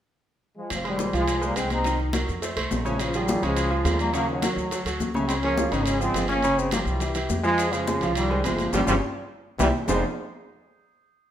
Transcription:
0.57 F3 G#3
0.70 F1 C3 F3, high bongo, high conga, high timbale, maracas
0.85 D#3 G3 G#3 G#4 C5, high bongo, high conga, high timbale
0.98 G#3 G#4 C5, high bongo, high conga, maracas
1.13 C2 F3 G#3 F4 F5, high bongo, high conga, high timbale, maracas
1.28 high bongo, high conga, high timbale, maracas
1.41 G3 G#3 A#3 G#4 C5, high bongo, high conga, maracas
1.56 C2 G#3 C4 G#4 C5, high bongo, low bongo, high conga, high timbale, maracas
1.70 C4 D#4, high conga, high timbale, maracas
1.84 D#3 D#4 D#5, high bongo, high conga, high timbale, maracas
1.99 high bongo, high conga
2.13 F#3 F#4 A#4, high bongo, high conga, high timbale, maracas
2.28 F2, high bongo, high conga, maracas
2.42 A3 A4 C5, high bongo, high conga, high timbale, maracas
2.56 C2 A3 A4 C5, high bongo, high conga, high timbale
2.71 A#1, high bongo, low bongo, high conga, low timbale, maracas
2.85 C#3 F3 A3 C#4 C#5, high conga, maracas
3.00 C#3 F3, high bongo, high conga, high timbale, maracas
3.14 D#3 F3 G3 F4 G#4, high bongo, high timbale, maracas
3.28 F3 F4 G#4, high bongo, high conga, maracas
3.43 C#2 C#3 F3 G#3 C#4 C#5, high bongo, high conga, high timbale, maracas
3.57 high bongo, high conga, high timbale, maracas
3.71 F3 F4 G#4, high bongo, high conga
3.84 D#2 F3 F4 G#4, high bongo, low bongo, high conga, high timbale, low timbale, maracas
3.99 G3 A#3, high timbale, maracas
4.13 C#3 F#3 A#3 C#4 C#5, high bongo, high conga, high timbale, maracas
4.29 D#3 F#3, high bongo, high conga
4.42 F#3 F#4 A#4, high bongo, high conga, high timbale, maracas
4.56 D2, high bongo, high conga, maracas
4.71 F#3 F#4 A4, high bongo, high conga, high timbale, maracas
4.85 D2 F#3 F#4 A4, high bongo, high conga, high timbale, maracas
4.99 C#2, high bongo, low bongo, high conga, maracas
5.14 C#3 F#3 A3 C#4 C#5, high conga, maracas
5.27 G#3 C4, high bongo, high timbale, maracas
5.42 F3 A#3 C#4 F4 G#4, high bongo, high conga, high timbale
5.58 F3 F4 G#4, high bongo, high conga, maracas
5.71 G#1 C#3 C4 C#4 D#4 C#5, high bongo, high conga, high timbale, maracas
5.84 G#3 C#4, high bongo, high conga, high timbale, maracas
6.00 F3 G#3 C4 F4 G#4, high conga, maracas
6.14 G1 F3 F4 G#4, high bongo, low bongo, high conga, high timbale, maracas
6.28 A#3 C#4, high conga, high timbale, maracas
6.43 C#3 C#4 C#5, high bongo, high conga, high timbale, maracas
6.57 G#3 C4, high bongo, high conga, maracas
6.71 F3 G3 A#3 F4 G4, high bongo, high conga, high timbale, maracas
6.86 C2 E3 G3, high bongo, high conga, maracas
7.00 E3 E4 G4, high bongo, high conga, high timbale, maracas
7.15 E3 E4 G4, high bongo, high conga, high timbale, maracas
7.29 F2, high bongo, low bongo, high conga, maracas
7.43 F3 G#3 F4 F5, maracas
7.58 high bongo, high conga, high timbale, maracas
7.71 C#3 F3 G#3 G#4 C5, high bongo, high conga, high timbale, maracas
7.87 G#3 G#4 C5, high bongo, high conga, maracas
8.01 C2 F3 F4 F5, high bongo, high conga, high timbale, maracas
8.15 D#3 G3, high bongo, high conga, high timbale, maracas
8.30 G#3 G#4 C5, high bongo, high conga
8.44 G1 C3 F3 G#3 G#4 C5, high bongo, low bongo, high conga, high timbale, low timbale, maracas
8.59 high conga, high timbale, maracas
8.73 G1 C#3 F3 G3 C#4 F4 G4, low bongo, high conga, high timbale, maracas
8.86 G1 C#3 F3 G3 C#4 F4 G4, low bongo, high conga, high timbale, maracas
9.59 C2 C3 E3 G3 C4 E4 G4, low bongo, high conga, high timbale, maracas
9.87 F1 F3 G#3 C4 D#4 F4 G#4 C5, low bongo, low conga, low timbale, maracas

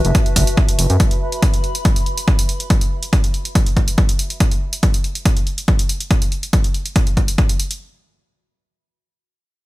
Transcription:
Already playing: F#4 B4 E5 A5
0.05 F#1, closed hi-hat
0.15 kick, closed hi-hat
0.26 closed hi-hat
0.36 F#1, kick, open hi-hat
0.47 closed hi-hat
0.53 B5
0.57 kick, closed hi-hat
0.69 closed hi-hat
0.79 F#1, open hi-hat
0.90 F#2, closed hi-hat
1.00 kick, closed hi-hat
1.11 closed hi-hat
1.32 closed hi-hat
1.42 kick, closed hi-hat
1.54 closed hi-hat
1.64 closed hi-hat
1.75 closed hi-hat
1.85 kick, closed hi-hat
1.96 closed hi-hat
2.06 closed hi-hat
2.17 closed hi-hat
2.28 kick, closed hi-hat
2.39 closed hi-hat
2.49 closed hi-hat
2.60 closed hi-hat
2.70 kick, closed hi-hat
2.81 closed hi-hat
3.03 closed hi-hat
3.13 kick, closed hi-hat
3.24 closed hi-hat
3.34 closed hi-hat
3.45 closed hi-hat
3.55 kick, closed hi-hat
3.66 closed hi-hat
3.77 kick, closed hi-hat
3.88 closed hi-hat
3.98 kick, closed hi-hat
4.09 closed hi-hat
4.19 closed hi-hat
4.30 closed hi-hat
4.40 kick, closed hi-hat
4.51 closed hi-hat
4.73 closed hi-hat
4.83 kick, closed hi-hat
4.94 closed hi-hat
5.04 closed hi-hat
5.15 closed hi-hat
5.25 kick, closed hi-hat
5.37 closed hi-hat
5.47 closed hi-hat
5.58 closed hi-hat
5.68 kick, closed hi-hat
5.79 closed hi-hat
5.89 closed hi-hat
6.00 closed hi-hat
6.11 kick, closed hi-hat
6.22 closed hi-hat
6.32 closed hi-hat
6.43 closed hi-hat
6.53 kick, closed hi-hat
6.64 closed hi-hat
6.74 closed hi-hat
6.86 closed hi-hat
6.96 kick, closed hi-hat
7.07 closed hi-hat
7.17 kick, closed hi-hat
7.28 closed hi-hat
7.38 kick, closed hi-hat
7.49 closed hi-hat
7.60 closed hi-hat
7.71 closed hi-hat

